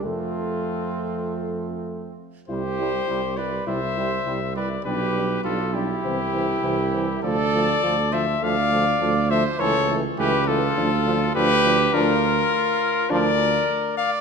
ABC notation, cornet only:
X:1
M:4/4
L:1/8
Q:1/4=102
K:F
V:1 name="Cornet"
F6- F z | [K:C] c3 d e3 d | B2 A G4- G | d3 e f3 e |
^c z B A3 B2 | [K:Dphr] B4 d3 f |]